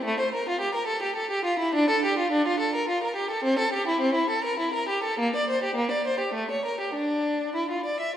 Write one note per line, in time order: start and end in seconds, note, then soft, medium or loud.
0.05 0.17 A3 medium
0.20 0.32 C5 medium
0.34 0.46 A#4 medium
0.49 0.60 F4 medium
0.61 0.73 G4 medium
0.75 0.87 A#4 medium
0.87 1.01 A4 medium
1.03 1.16 G4 medium
1.16 1.30 A4 medium
1.31 1.44 G4 medium
1.45 1.59 F4 medium
1.59 1.74 E4 medium
1.75 1.89 D4 medium
1.90 2.04 A4 medium
2.05 2.18 G4 medium
2.19 2.32 F4 medium
2.32 2.46 D4 medium
2.47 2.61 F4 medium
2.60 2.74 A4 medium
2.75 2.89 A#4 medium
2.89 3.03 F4 medium
3.04 3.17 A#4 medium
3.16 3.31 G4 medium
3.31 3.45 A4 medium
3.44 3.59 C4 medium
3.59 3.73 A4 medium
3.73 3.87 G4 medium
3.88 4.02 E4 medium
4.01 4.16 C4 medium
4.15 4.29 E4 medium
4.30 4.44 A4 medium
4.44 4.58 A#4 medium
4.59 4.73 E4 medium
4.74 4.88 A#4 medium
4.89 5.03 G4 medium
5.03 5.18 A4 medium
5.19 5.33 A#3 medium
5.36 5.49 D5 medium
5.49 5.63 C5 medium
5.63 5.77 G4 medium
5.75 5.90 A#3 medium
5.91 6.05 D5 medium
6.07 6.20 C5 medium
6.20 6.34 G4 medium
6.34 6.49 A3 medium
6.51 6.65 C#5 medium
6.65 6.79 A#4 medium
6.80 6.95 G4 medium
6.94 7.54 D4 medium
7.56 7.70 E4 medium
7.71 7.85 F4 soft
7.85 8.00 D5 medium
8.00 8.15 E5 medium